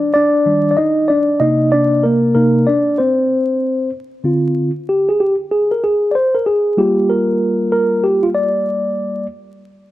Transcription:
Already playing: D4 D5
0.14 D4 D5
0.46 D#3 G3 D4
0.71 D5
0.77 D#4 D#5
1.08 D4 D5
1.40 C3 A#3 D#4 D#5
1.72 D4 D5
2.03 A#3 A#4
2.35 C3 A#3 D#4 A#4
2.67 D4 D5
2.98 C4 C5
4.24 D3 C4 F4
4.89 G4
5.09 G#4
5.20 G4
5.51 G#4
5.71 A#4
5.84 G#4
6.11 C5 D5
6.35 A#4
6.46 G#4
6.77 G3 A#3 F4 G4
7.09 A#4
7.72 A#4
8.04 G4
8.23 F4
8.35 D5

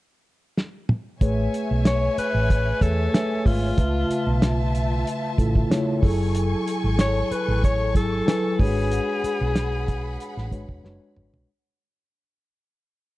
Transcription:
0.57 snare
0.89 mid tom
1.21 A1 A3 G#4 B4 C#5 E5 G#5, kick, closed hi-hat
1.54 closed hi-hat
1.71 B1
1.85 C#5, snare, closed hi-hat
2.18 B4, muted fingered electric bass stroke, closed hi-hat
2.34 A1
2.50 kick, closed hi-hat
2.81 E2 A3 G#4 A4 B4 C#5, kick, closed hi-hat
3.13 A3 B4 E5 G#5, snare, closed hi-hat
3.46 G#1 F4, kick, open hi-hat
3.77 C#2 C#3 A3 F4 B4 E5 A5, kick, closed hi-hat
4.10 muted fingered electric bass stroke, closed hi-hat
4.27 B1
4.42 snare, closed hi-hat
4.75 closed hi-hat
5.07 closed hi-hat
5.38 A1 C#3 A3 E4 F4 A4, kick, closed hi-hat
5.55 kick
5.70 C#3 A3 E4 F4 C#5, snare, closed hi-hat
6.02 F#1 F#3 E4 G#4 A4 G#5 C#6, kick, open hi-hat
6.35 closed hi-hat
6.68 closed hi-hat
6.84 G#1
6.99 C#5, snare, closed hi-hat
7.31 B4, muted fingered electric bass stroke, closed hi-hat
7.48 A1
7.64 C#5, kick, closed hi-hat
7.94 G#1 F#3 E4 G#4 A4, kick, closed hi-hat
8.26 F#3 E4 B4 G#5, snare, closed hi-hat
8.59 G#1 G#3 D4 F#4 G#4 B4 C#5 F#5 B5, kick, open hi-hat
8.92 closed hi-hat
9.24 muted fingered electric bass stroke, closed hi-hat
9.41 B1
9.56 snare, closed hi-hat
9.88 kick, closed hi-hat
10.20 closed hi-hat
10.37 A1, snare
10.51 G#3 D4 F#4 B4 C#5, kick, closed hi-hat
10.69 E1, kick
10.84 F#1 G#3 D4 F#4 B4 C#5, snare
11.16 G#1, mid tom
11.33 B1, floor tom

